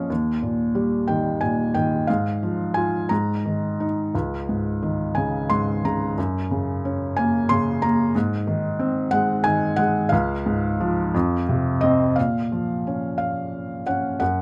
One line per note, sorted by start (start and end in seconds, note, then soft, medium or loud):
0.00 0.11 A#2 soft
0.00 0.12 F3 soft
0.00 0.12 C#4 soft
0.00 0.12 F4 soft
0.00 0.12 C#5 medium
0.00 0.12 D#5 medium
0.00 0.12 F5 medium
0.10 2.04 D#2 medium
0.42 1.40 A#2 soft
0.75 2.04 G3 soft
1.08 1.74 D#3 soft
1.08 1.42 G5 medium
1.41 2.07 A#2 soft
1.41 1.72 G#5 medium
1.74 2.08 D#3 soft
1.74 2.09 G5 medium
2.07 3.08 G#2 medium
2.07 2.78 F5 medium
2.43 3.09 F3 soft
2.74 3.10 F4 soft
2.74 3.07 G#5 medium
3.09 4.11 G#2 medium
3.09 3.83 A#5 medium
3.46 4.12 D#3 soft
3.80 4.13 D#4 soft
4.15 6.14 C#2 soft
4.49 5.49 G#2 soft
4.83 6.14 D#3 soft
5.15 5.83 C#3 soft
5.15 5.47 G#5 medium
5.50 6.16 G#2 soft
5.50 5.81 C6 medium
5.84 6.17 C#3 soft
5.84 6.16 A#5 medium
6.18 8.11 F#2 medium
6.51 7.49 C#3 soft
6.85 8.11 C#4 soft
7.17 7.81 A#3 medium
7.17 7.47 G#5 medium
7.49 8.13 C#3 soft
7.49 7.83 C6 medium
7.82 8.14 A#3 medium
7.82 8.12 A#5 medium
8.15 10.08 G#2 medium
8.47 9.44 D#3 medium
8.79 10.08 C4 medium
9.11 9.77 G#3 medium
9.11 9.46 F#5 medium
9.44 10.10 D#3 medium
9.44 9.79 G#5 medium
9.76 10.11 G#3 medium
9.76 10.12 F#5 medium
10.09 11.11 C#2 medium
10.09 11.43 F5 medium
10.46 11.12 G#2 medium
10.80 11.13 F3 medium
11.14 12.15 F2 medium
11.49 12.16 C3 medium
11.81 12.17 C4 medium
11.81 12.17 D#5 medium
12.16 14.17 A#2 soft
12.16 13.16 F5 medium
12.52 13.83 F3 soft
12.87 13.86 C#4 soft
13.18 13.82 F5 medium
13.87 14.20 C#4 soft
13.87 14.18 F#5 medium
14.20 14.42 F#2 soft
14.20 14.42 F#5 medium